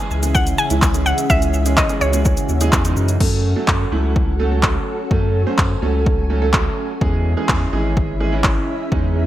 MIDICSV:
0, 0, Header, 1, 6, 480
1, 0, Start_track
1, 0, Tempo, 476190
1, 1309, Time_signature, 4, 2, 24, 8
1, 9339, End_track
2, 0, Start_track
2, 0, Title_t, "Synth pluck"
2, 0, Program_c, 0, 84
2, 0, Note_on_c, 0, 80, 113
2, 349, Note_on_c, 0, 78, 105
2, 363, Note_off_c, 0, 80, 0
2, 457, Note_off_c, 0, 78, 0
2, 588, Note_on_c, 0, 80, 103
2, 1035, Note_off_c, 0, 80, 0
2, 1068, Note_on_c, 0, 78, 101
2, 1292, Note_off_c, 0, 78, 0
2, 1308, Note_on_c, 0, 76, 108
2, 1755, Note_off_c, 0, 76, 0
2, 1788, Note_on_c, 0, 75, 96
2, 2028, Note_on_c, 0, 73, 84
2, 2036, Note_off_c, 0, 75, 0
2, 2949, Note_off_c, 0, 73, 0
2, 9339, End_track
3, 0, Start_track
3, 0, Title_t, "String machine"
3, 0, Program_c, 1, 50
3, 0, Note_on_c, 1, 49, 75
3, 0, Note_on_c, 1, 61, 71
3, 0, Note_on_c, 1, 68, 73
3, 0, Note_on_c, 1, 76, 83
3, 1269, Note_off_c, 1, 68, 0
3, 1310, Note_on_c, 1, 66, 66
3, 3191, Note_off_c, 1, 49, 0
3, 3191, Note_off_c, 1, 61, 0
3, 3192, Note_off_c, 1, 76, 0
3, 3211, Note_off_c, 1, 66, 0
3, 3229, Note_on_c, 1, 61, 71
3, 3229, Note_on_c, 1, 66, 66
3, 3229, Note_on_c, 1, 69, 65
3, 3229, Note_on_c, 1, 78, 80
3, 5130, Note_off_c, 1, 78, 0
3, 5148, Note_on_c, 1, 80, 84
3, 7031, Note_off_c, 1, 61, 0
3, 7031, Note_off_c, 1, 66, 0
3, 7031, Note_off_c, 1, 69, 0
3, 7050, Note_off_c, 1, 80, 0
3, 7068, Note_on_c, 1, 64, 66
3, 7069, Note_on_c, 1, 61, 76
3, 7069, Note_on_c, 1, 68, 67
3, 7069, Note_on_c, 1, 76, 82
3, 9339, Note_off_c, 1, 61, 0
3, 9339, Note_off_c, 1, 64, 0
3, 9339, Note_off_c, 1, 68, 0
3, 9339, Note_off_c, 1, 76, 0
3, 9339, End_track
4, 0, Start_track
4, 0, Title_t, "Grand piano"
4, 0, Program_c, 2, 0
4, 0, Note_on_c, 2, 52, 76
4, 0, Note_on_c, 2, 56, 73
4, 0, Note_on_c, 2, 61, 73
4, 0, Note_on_c, 2, 68, 83
4, 185, Note_off_c, 2, 52, 0
4, 186, Note_off_c, 2, 56, 0
4, 187, Note_off_c, 2, 61, 0
4, 188, Note_off_c, 2, 68, 0
4, 226, Note_on_c, 2, 52, 75
4, 228, Note_on_c, 2, 56, 67
4, 230, Note_on_c, 2, 61, 69
4, 232, Note_on_c, 2, 68, 82
4, 622, Note_off_c, 2, 52, 0
4, 623, Note_off_c, 2, 56, 0
4, 624, Note_off_c, 2, 61, 0
4, 625, Note_off_c, 2, 68, 0
4, 707, Note_on_c, 2, 52, 76
4, 709, Note_on_c, 2, 56, 70
4, 710, Note_on_c, 2, 61, 67
4, 712, Note_on_c, 2, 64, 86
4, 905, Note_off_c, 2, 52, 0
4, 906, Note_off_c, 2, 56, 0
4, 907, Note_off_c, 2, 61, 0
4, 908, Note_off_c, 2, 64, 0
4, 947, Note_on_c, 2, 52, 74
4, 948, Note_on_c, 2, 56, 71
4, 950, Note_on_c, 2, 61, 71
4, 952, Note_on_c, 2, 68, 82
4, 1244, Note_off_c, 2, 52, 0
4, 1245, Note_off_c, 2, 56, 0
4, 1245, Note_off_c, 2, 61, 0
4, 1246, Note_off_c, 2, 68, 0
4, 1307, Note_on_c, 2, 52, 74
4, 1309, Note_on_c, 2, 56, 69
4, 1311, Note_on_c, 2, 61, 67
4, 1312, Note_on_c, 2, 68, 83
4, 1604, Note_off_c, 2, 52, 0
4, 1605, Note_off_c, 2, 56, 0
4, 1606, Note_off_c, 2, 61, 0
4, 1607, Note_off_c, 2, 68, 0
4, 1667, Note_on_c, 2, 52, 73
4, 1669, Note_on_c, 2, 56, 71
4, 1670, Note_on_c, 2, 61, 68
4, 1672, Note_on_c, 2, 68, 83
4, 1865, Note_off_c, 2, 52, 0
4, 1866, Note_off_c, 2, 56, 0
4, 1867, Note_off_c, 2, 61, 0
4, 1868, Note_off_c, 2, 68, 0
4, 1907, Note_on_c, 2, 52, 78
4, 1909, Note_on_c, 2, 56, 72
4, 1910, Note_on_c, 2, 61, 69
4, 1912, Note_on_c, 2, 68, 82
4, 2106, Note_off_c, 2, 52, 0
4, 2106, Note_off_c, 2, 56, 0
4, 2107, Note_off_c, 2, 61, 0
4, 2108, Note_off_c, 2, 68, 0
4, 2147, Note_on_c, 2, 52, 78
4, 2149, Note_on_c, 2, 56, 71
4, 2151, Note_on_c, 2, 61, 70
4, 2152, Note_on_c, 2, 68, 83
4, 2543, Note_off_c, 2, 52, 0
4, 2543, Note_off_c, 2, 56, 0
4, 2544, Note_off_c, 2, 61, 0
4, 2545, Note_off_c, 2, 68, 0
4, 2628, Note_on_c, 2, 52, 90
4, 2629, Note_on_c, 2, 56, 84
4, 2631, Note_on_c, 2, 61, 80
4, 2632, Note_on_c, 2, 68, 101
4, 2826, Note_off_c, 2, 52, 0
4, 2826, Note_off_c, 2, 56, 0
4, 2827, Note_off_c, 2, 61, 0
4, 2828, Note_off_c, 2, 68, 0
4, 2867, Note_on_c, 2, 52, 88
4, 2869, Note_on_c, 2, 56, 81
4, 2871, Note_on_c, 2, 61, 79
4, 2873, Note_on_c, 2, 63, 99
4, 3164, Note_off_c, 2, 52, 0
4, 3165, Note_off_c, 2, 56, 0
4, 3166, Note_off_c, 2, 61, 0
4, 3167, Note_off_c, 2, 63, 0
4, 3227, Note_on_c, 2, 54, 85
4, 3229, Note_on_c, 2, 57, 77
4, 3231, Note_on_c, 2, 61, 80
4, 3232, Note_on_c, 2, 69, 89
4, 3524, Note_off_c, 2, 54, 0
4, 3525, Note_off_c, 2, 57, 0
4, 3526, Note_off_c, 2, 61, 0
4, 3526, Note_off_c, 2, 69, 0
4, 3587, Note_on_c, 2, 54, 83
4, 3588, Note_on_c, 2, 57, 73
4, 3590, Note_on_c, 2, 61, 77
4, 3592, Note_on_c, 2, 69, 91
4, 3884, Note_off_c, 2, 54, 0
4, 3884, Note_off_c, 2, 57, 0
4, 3885, Note_off_c, 2, 61, 0
4, 3886, Note_off_c, 2, 69, 0
4, 3947, Note_on_c, 2, 54, 81
4, 3949, Note_on_c, 2, 57, 78
4, 3950, Note_on_c, 2, 61, 74
4, 3952, Note_on_c, 2, 64, 93
4, 4342, Note_off_c, 2, 54, 0
4, 4343, Note_off_c, 2, 57, 0
4, 4344, Note_off_c, 2, 61, 0
4, 4345, Note_off_c, 2, 64, 0
4, 4427, Note_on_c, 2, 54, 88
4, 4428, Note_on_c, 2, 57, 79
4, 4430, Note_on_c, 2, 61, 77
4, 4432, Note_on_c, 2, 69, 98
4, 4527, Note_off_c, 2, 54, 0
4, 4528, Note_off_c, 2, 57, 0
4, 4529, Note_off_c, 2, 61, 0
4, 4529, Note_off_c, 2, 69, 0
4, 4546, Note_on_c, 2, 54, 83
4, 4548, Note_on_c, 2, 57, 75
4, 4550, Note_on_c, 2, 61, 76
4, 4552, Note_on_c, 2, 69, 93
4, 5041, Note_off_c, 2, 54, 0
4, 5041, Note_off_c, 2, 57, 0
4, 5042, Note_off_c, 2, 61, 0
4, 5043, Note_off_c, 2, 69, 0
4, 5146, Note_on_c, 2, 54, 83
4, 5147, Note_on_c, 2, 57, 83
4, 5149, Note_on_c, 2, 61, 83
4, 5151, Note_on_c, 2, 69, 90
4, 5443, Note_off_c, 2, 54, 0
4, 5444, Note_off_c, 2, 57, 0
4, 5445, Note_off_c, 2, 61, 0
4, 5446, Note_off_c, 2, 69, 0
4, 5506, Note_on_c, 2, 54, 85
4, 5508, Note_on_c, 2, 57, 76
4, 5510, Note_on_c, 2, 61, 77
4, 5511, Note_on_c, 2, 72, 93
4, 5803, Note_off_c, 2, 54, 0
4, 5804, Note_off_c, 2, 57, 0
4, 5805, Note_off_c, 2, 61, 0
4, 5806, Note_off_c, 2, 72, 0
4, 5865, Note_on_c, 2, 54, 84
4, 5867, Note_on_c, 2, 57, 79
4, 5868, Note_on_c, 2, 61, 81
4, 5870, Note_on_c, 2, 69, 93
4, 6262, Note_off_c, 2, 54, 0
4, 6262, Note_off_c, 2, 57, 0
4, 6263, Note_off_c, 2, 61, 0
4, 6264, Note_off_c, 2, 69, 0
4, 6346, Note_on_c, 2, 54, 88
4, 6348, Note_on_c, 2, 57, 75
4, 6349, Note_on_c, 2, 61, 79
4, 6351, Note_on_c, 2, 69, 95
4, 6446, Note_off_c, 2, 54, 0
4, 6447, Note_off_c, 2, 57, 0
4, 6448, Note_off_c, 2, 61, 0
4, 6449, Note_off_c, 2, 69, 0
4, 6465, Note_on_c, 2, 54, 88
4, 6467, Note_on_c, 2, 57, 78
4, 6468, Note_on_c, 2, 61, 79
4, 6470, Note_on_c, 2, 69, 99
4, 6960, Note_off_c, 2, 54, 0
4, 6961, Note_off_c, 2, 57, 0
4, 6962, Note_off_c, 2, 61, 0
4, 6962, Note_off_c, 2, 69, 0
4, 7065, Note_on_c, 2, 52, 89
4, 7067, Note_on_c, 2, 56, 81
4, 7069, Note_on_c, 2, 61, 77
4, 7071, Note_on_c, 2, 68, 97
4, 7363, Note_off_c, 2, 52, 0
4, 7364, Note_off_c, 2, 56, 0
4, 7365, Note_off_c, 2, 61, 0
4, 7366, Note_off_c, 2, 68, 0
4, 7426, Note_on_c, 2, 52, 85
4, 7428, Note_on_c, 2, 56, 78
4, 7429, Note_on_c, 2, 61, 81
4, 7431, Note_on_c, 2, 68, 93
4, 7723, Note_off_c, 2, 52, 0
4, 7724, Note_off_c, 2, 56, 0
4, 7725, Note_off_c, 2, 61, 0
4, 7726, Note_off_c, 2, 68, 0
4, 7786, Note_on_c, 2, 52, 83
4, 7788, Note_on_c, 2, 56, 79
4, 7789, Note_on_c, 2, 61, 81
4, 7791, Note_on_c, 2, 68, 97
4, 8182, Note_off_c, 2, 52, 0
4, 8183, Note_off_c, 2, 56, 0
4, 8184, Note_off_c, 2, 61, 0
4, 8184, Note_off_c, 2, 68, 0
4, 8266, Note_on_c, 2, 52, 83
4, 8268, Note_on_c, 2, 56, 76
4, 8269, Note_on_c, 2, 61, 82
4, 8271, Note_on_c, 2, 68, 97
4, 8366, Note_off_c, 2, 52, 0
4, 8367, Note_off_c, 2, 56, 0
4, 8368, Note_off_c, 2, 61, 0
4, 8369, Note_off_c, 2, 68, 0
4, 8385, Note_on_c, 2, 52, 87
4, 8387, Note_on_c, 2, 56, 79
4, 8389, Note_on_c, 2, 61, 78
4, 8391, Note_on_c, 2, 64, 95
4, 8880, Note_off_c, 2, 52, 0
4, 8881, Note_off_c, 2, 56, 0
4, 8882, Note_off_c, 2, 61, 0
4, 8883, Note_off_c, 2, 64, 0
4, 8986, Note_on_c, 2, 52, 86
4, 8988, Note_on_c, 2, 56, 82
4, 8990, Note_on_c, 2, 61, 81
4, 8991, Note_on_c, 2, 63, 95
4, 9283, Note_off_c, 2, 52, 0
4, 9284, Note_off_c, 2, 56, 0
4, 9285, Note_off_c, 2, 61, 0
4, 9286, Note_off_c, 2, 63, 0
4, 9339, End_track
5, 0, Start_track
5, 0, Title_t, "Sub bass"
5, 0, Program_c, 3, 38
5, 110, Note_on_c, 3, 37, 91
5, 542, Note_off_c, 3, 37, 0
5, 711, Note_on_c, 3, 37, 93
5, 1142, Note_off_c, 3, 37, 0
5, 1310, Note_on_c, 3, 37, 102
5, 1828, Note_off_c, 3, 37, 0
5, 2030, Note_on_c, 3, 37, 96
5, 2375, Note_off_c, 3, 37, 0
5, 2510, Note_on_c, 3, 39, 90
5, 2726, Note_off_c, 3, 39, 0
5, 2748, Note_on_c, 3, 40, 91
5, 2965, Note_off_c, 3, 40, 0
5, 2989, Note_on_c, 3, 42, 85
5, 3206, Note_off_c, 3, 42, 0
5, 3230, Note_on_c, 3, 42, 111
5, 3575, Note_off_c, 3, 42, 0
5, 3710, Note_on_c, 3, 42, 106
5, 3883, Note_off_c, 3, 42, 0
5, 3949, Note_on_c, 3, 37, 102
5, 4813, Note_off_c, 3, 37, 0
5, 5150, Note_on_c, 3, 42, 110
5, 5496, Note_off_c, 3, 42, 0
5, 5629, Note_on_c, 3, 42, 98
5, 5802, Note_off_c, 3, 42, 0
5, 5869, Note_on_c, 3, 37, 100
5, 6733, Note_off_c, 3, 37, 0
5, 7069, Note_on_c, 3, 40, 109
5, 7415, Note_off_c, 3, 40, 0
5, 7549, Note_on_c, 3, 40, 99
5, 7722, Note_off_c, 3, 40, 0
5, 7790, Note_on_c, 3, 32, 100
5, 8654, Note_off_c, 3, 32, 0
5, 8990, Note_on_c, 3, 40, 104
5, 9335, Note_off_c, 3, 40, 0
5, 9339, End_track
6, 0, Start_track
6, 0, Title_t, "Drums"
6, 110, Note_on_c, 9, 82, 48
6, 211, Note_off_c, 9, 82, 0
6, 230, Note_on_c, 9, 42, 87
6, 230, Note_on_c, 9, 82, 82
6, 331, Note_off_c, 9, 42, 0
6, 331, Note_off_c, 9, 82, 0
6, 349, Note_on_c, 9, 82, 66
6, 352, Note_on_c, 9, 36, 105
6, 450, Note_off_c, 9, 82, 0
6, 453, Note_off_c, 9, 36, 0
6, 470, Note_on_c, 9, 42, 58
6, 470, Note_on_c, 9, 82, 58
6, 571, Note_off_c, 9, 42, 0
6, 571, Note_off_c, 9, 82, 0
6, 586, Note_on_c, 9, 82, 56
6, 687, Note_off_c, 9, 82, 0
6, 708, Note_on_c, 9, 42, 73
6, 708, Note_on_c, 9, 82, 74
6, 809, Note_off_c, 9, 42, 0
6, 809, Note_off_c, 9, 82, 0
6, 827, Note_on_c, 9, 39, 102
6, 828, Note_on_c, 9, 36, 114
6, 830, Note_on_c, 9, 82, 77
6, 928, Note_off_c, 9, 39, 0
6, 929, Note_off_c, 9, 36, 0
6, 931, Note_off_c, 9, 82, 0
6, 951, Note_on_c, 9, 42, 56
6, 951, Note_on_c, 9, 82, 58
6, 1052, Note_off_c, 9, 42, 0
6, 1052, Note_off_c, 9, 82, 0
6, 1071, Note_on_c, 9, 82, 54
6, 1171, Note_off_c, 9, 82, 0
6, 1189, Note_on_c, 9, 42, 69
6, 1189, Note_on_c, 9, 82, 72
6, 1289, Note_off_c, 9, 42, 0
6, 1289, Note_off_c, 9, 82, 0
6, 1309, Note_on_c, 9, 82, 68
6, 1310, Note_on_c, 9, 36, 107
6, 1410, Note_off_c, 9, 82, 0
6, 1411, Note_off_c, 9, 36, 0
6, 1432, Note_on_c, 9, 42, 49
6, 1432, Note_on_c, 9, 82, 48
6, 1533, Note_off_c, 9, 42, 0
6, 1533, Note_off_c, 9, 82, 0
6, 1547, Note_on_c, 9, 82, 58
6, 1648, Note_off_c, 9, 82, 0
6, 1670, Note_on_c, 9, 42, 66
6, 1670, Note_on_c, 9, 82, 69
6, 1771, Note_off_c, 9, 42, 0
6, 1771, Note_off_c, 9, 82, 0
6, 1786, Note_on_c, 9, 82, 74
6, 1788, Note_on_c, 9, 39, 117
6, 1789, Note_on_c, 9, 36, 107
6, 1887, Note_off_c, 9, 82, 0
6, 1889, Note_off_c, 9, 39, 0
6, 1890, Note_off_c, 9, 36, 0
6, 1909, Note_on_c, 9, 42, 47
6, 1909, Note_on_c, 9, 82, 48
6, 2010, Note_off_c, 9, 42, 0
6, 2010, Note_off_c, 9, 82, 0
6, 2029, Note_on_c, 9, 82, 49
6, 2130, Note_off_c, 9, 82, 0
6, 2150, Note_on_c, 9, 42, 86
6, 2150, Note_on_c, 9, 82, 84
6, 2251, Note_off_c, 9, 42, 0
6, 2251, Note_off_c, 9, 82, 0
6, 2269, Note_on_c, 9, 82, 69
6, 2273, Note_on_c, 9, 36, 108
6, 2370, Note_off_c, 9, 82, 0
6, 2373, Note_off_c, 9, 36, 0
6, 2390, Note_on_c, 9, 42, 57
6, 2390, Note_on_c, 9, 82, 55
6, 2491, Note_off_c, 9, 42, 0
6, 2491, Note_off_c, 9, 82, 0
6, 2507, Note_on_c, 9, 82, 55
6, 2608, Note_off_c, 9, 82, 0
6, 2628, Note_on_c, 9, 42, 73
6, 2628, Note_on_c, 9, 82, 76
6, 2729, Note_off_c, 9, 42, 0
6, 2729, Note_off_c, 9, 82, 0
6, 2748, Note_on_c, 9, 36, 112
6, 2748, Note_on_c, 9, 39, 101
6, 2751, Note_on_c, 9, 82, 72
6, 2848, Note_off_c, 9, 39, 0
6, 2849, Note_off_c, 9, 36, 0
6, 2851, Note_off_c, 9, 82, 0
6, 2871, Note_on_c, 9, 42, 56
6, 2871, Note_on_c, 9, 82, 57
6, 2972, Note_off_c, 9, 42, 0
6, 2972, Note_off_c, 9, 82, 0
6, 2991, Note_on_c, 9, 82, 52
6, 3092, Note_off_c, 9, 82, 0
6, 3109, Note_on_c, 9, 42, 70
6, 3109, Note_on_c, 9, 82, 71
6, 3210, Note_off_c, 9, 42, 0
6, 3210, Note_off_c, 9, 82, 0
6, 3230, Note_on_c, 9, 36, 97
6, 3231, Note_on_c, 9, 49, 84
6, 3331, Note_off_c, 9, 36, 0
6, 3331, Note_off_c, 9, 49, 0
6, 3709, Note_on_c, 9, 36, 107
6, 3709, Note_on_c, 9, 39, 118
6, 3810, Note_off_c, 9, 36, 0
6, 3810, Note_off_c, 9, 39, 0
6, 4193, Note_on_c, 9, 36, 105
6, 4294, Note_off_c, 9, 36, 0
6, 4667, Note_on_c, 9, 39, 96
6, 4668, Note_on_c, 9, 36, 107
6, 4768, Note_off_c, 9, 39, 0
6, 4769, Note_off_c, 9, 36, 0
6, 5150, Note_on_c, 9, 36, 102
6, 5250, Note_off_c, 9, 36, 0
6, 5628, Note_on_c, 9, 39, 118
6, 5629, Note_on_c, 9, 36, 107
6, 5729, Note_off_c, 9, 39, 0
6, 5730, Note_off_c, 9, 36, 0
6, 6113, Note_on_c, 9, 36, 105
6, 6213, Note_off_c, 9, 36, 0
6, 6587, Note_on_c, 9, 39, 93
6, 6588, Note_on_c, 9, 36, 109
6, 6687, Note_off_c, 9, 39, 0
6, 6689, Note_off_c, 9, 36, 0
6, 7069, Note_on_c, 9, 36, 100
6, 7170, Note_off_c, 9, 36, 0
6, 7548, Note_on_c, 9, 39, 114
6, 7549, Note_on_c, 9, 36, 107
6, 7649, Note_off_c, 9, 39, 0
6, 7650, Note_off_c, 9, 36, 0
6, 8032, Note_on_c, 9, 36, 108
6, 8133, Note_off_c, 9, 36, 0
6, 8507, Note_on_c, 9, 39, 96
6, 8508, Note_on_c, 9, 36, 111
6, 8608, Note_off_c, 9, 39, 0
6, 8609, Note_off_c, 9, 36, 0
6, 8990, Note_on_c, 9, 36, 100
6, 9091, Note_off_c, 9, 36, 0
6, 9339, End_track
0, 0, End_of_file